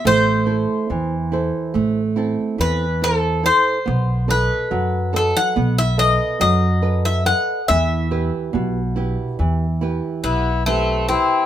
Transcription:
X:1
M:9/8
L:1/16
Q:3/8=47
K:Em
V:1 name="Bouzouki"
c12 B2 A2 c2- | c2 B4 A f2 e ^d2 d3 e f2 | e12 B,2 A,2 C2 |]
V:2 name="Nylon-string guitar"
A,2 [EAc]2 E,2 [EAc]2 A,2 [CEA]2 E,2 [EAc]2 [EAc]2 | B,2 [AB^d]2 F,2 [ABd]2 B,2 [ABd]2 F,2 [ABd]2 [ABd]2 | E,2 [EGB]2 B,,2 [EGB]2 E,2 [EGB]4 [EGB]2 [EGB]2 |]
V:3 name="Accordion"
z16 z2 | z16 z2 | z12 E2 C2 E2 |]
V:4 name="Upright bass" clef=bass
A,,,4 E,,4 A,,,4 E,,6 | B,,,4 F,,4 B,,,4 F,,6 | E,,4 B,,,4 E,,4 B,,,6 |]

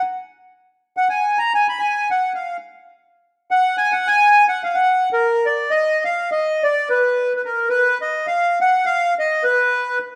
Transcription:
X:1
M:9/8
L:1/16
Q:3/8=71
K:Ebm
V:1 name="Accordion"
z6 g a2 b a c' a2 g2 f2 | z6 g2 a g a3 g f g3 | B2 =d2 e2 f2 e2 d2 c3- c/2 c/2 B2 | c2 e2 f2 g2 f2 e2 c4- c/2 z3/2 |]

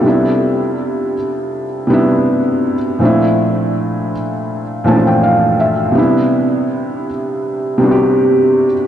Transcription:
X:1
M:4/4
L:1/16
Q:"Swing 16ths" 1/4=81
K:C
V:1 name="Felt piano"
[FA] z12 z3 | z8 z2 a g f2 e2 | z16 |]
V:2 name="Felt piano"
[C,G,B,DE]6 z4 [C,G,B,DE]4 z2 | [_B,,F,A,CDE]6 z4 [B,,E,F,A,C_D=D]4 z2 | [C,G,B,DE]6 z4 [C,G,B,D^FG]4 z2 |]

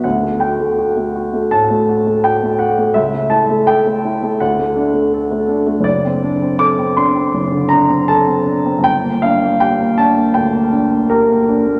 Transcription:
X:1
M:4/4
L:1/16
Q:1/4=82
K:D
V:1 name="Grand piano"
f2 g6 a4 g2 f2 | e2 a2 g4 f4 z4 | [K:Gm] d4 d'2 c'4 b2 a4 | g2 f2 g2 a2 g4 B4 |]
V:2 name="Grand piano"
D,, A, F A, F A, F A, A,, A, F A, F A, F A, | C,, A, E A, A A, E A, D,, A, D A, A A, D A, | [K:Gm] ^F,,, C D C A C D C F,,, D, D C A C D C | G,,, B, D B, G B, D B, D,, B, D B, G B, D B, |]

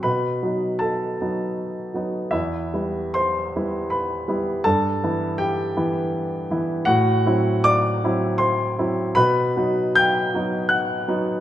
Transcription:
X:1
M:3/4
L:1/8
Q:1/4=80
K:Em
V:1 name="Grand piano"
[Bb]2 [Aa]4 | [Ee]2 [cc']2 [Bb]2 | [Aa]2 [Gg]4 | [Ff]2 [dd']2 [cc']2 |
[Bb]2 [gg']2 [ff']2 |]
V:2 name="Grand piano"
B,, [F,B,^D]2 [F,B,D]2 [F,B,D] | E,, [G,B,E]2 [G,B,E]2 [G,B,E] | G,, [E,B,E]2 [E,B,E]2 [E,B,E] | A,, [F,CE]2 [F,CE]2 [F,CE] |
B,, [F,B,^D]2 [F,B,D]2 [F,B,D] |]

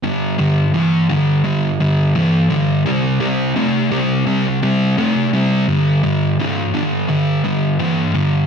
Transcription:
X:1
M:4/4
L:1/8
Q:1/4=85
K:Clyd
V:1 name="Distorted electric guitar" clef=bass
[G,,D,] [G,,D,] [G,,E,] [G,,D,] [G,,D,] [G,,D,] [G,,E,] [G,,D,] | [C,G,] [C,G,] [C,A,] [C,G,] [C,G,] [C,G,] [C,A,] [C,G,] | [G,,D,] [G,,D,] [G,,E,] [G,,D,] [G,,D,] [G,,D,] [G,,E,] [G,,D,] |]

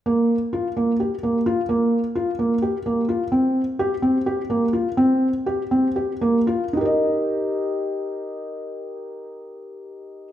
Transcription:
X:1
M:7/8
L:1/8
Q:1/4=124
K:Eb
V:1 name="Felt piano"
B,2 F B, G B, F | B,2 F B, G B, F | C2 G C G B, F | C2 G C G B, F |
[EGBe]6- [EGBe]- | [EGBe]6- [EGBe] |]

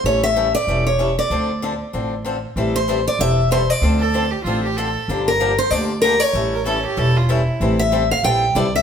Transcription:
X:1
M:4/4
L:1/16
Q:"Swing" 1/4=190
K:Aphr
V:1 name="Steel-string acoustic guitar"
^c2 e4 d4 c4 d2- | d12 z4 | z2 c4 d2 e4 c2 d2- | d12- d2 z2 |
z2 B4 c2 d4 B2 ^c2- | ^c12- c2 z2 | z2 e4 f2 g4 d2 e2 |]
V:2 name="Violin"
z16 | z16 | z16 | z2 A4 G2 F2 G2 A4- |
A z12 z3 | z2 B2 A2 G2 A2 F2 E4- | E z12 z3 |]
V:3 name="Steel-string acoustic guitar"
[E,G,^CEA]2 z2 [E,G,CEA]2 z2 [E,G,CEA]2 z2 [E,G,CEA]2 z2 | [D,F,CDA]2 z2 [D,F,CDA]2 z2 [D,F,CDA]2 z2 [D,F,CDA]2 z2 | [E,G,CEA]2 z2 [E,G,CEA]2 z2 [E,G,CEA]2 z2 [E,G,CEA]2 z2 | [D,F,CDA]2 z2 [D,F,CDA]2 z2 [D,F,CDA]2 z2 [D,F,CDA]2 z2 |
[D,F,B,DG]2 z2 [D,F,B,DG]2 z2 [D,F,B,DG]2 z2 [D,F,B,DG]2 z2 | [E,G,^CEA]2 z2 [E,G,CEA]2 z2 [E,G,CEA]2 z2 [E,G,CEA]2 z2 | [E,G,CEA]2 z2 [E,G,CEA]2 z2 [E,G,CEA]2 z2 [E,G,CEA]2 z2 |]
V:4 name="Upright bass" clef=bass
A,,,8 E,,,8 | D,,8 A,,,8 | A,,,8 E,,,8 | D,,8 A,,,8 |
G,,,8 D,,8 | A,,,8 E,,,8 | A,,,8 B,,,4 C,,4 |]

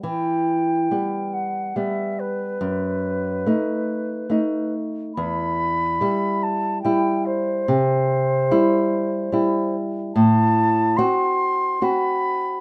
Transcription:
X:1
M:3/4
L:1/8
Q:1/4=71
K:Em
V:1 name="Flute"
g3 f e B- | B4- B z | b3 a g c- | c4- c z |
a2 c'2 b2 |]
V:2 name="Nylon-string guitar"
E,2 [G,B,]2 [G,B,]2 | F,,2 [A,^D]2 [A,D]2 | E,,2 [G,E]2 [G,E]2 | C,2 [G,E]2 [G,E]2 |
A,,2 [CF]2 [CF]2 |]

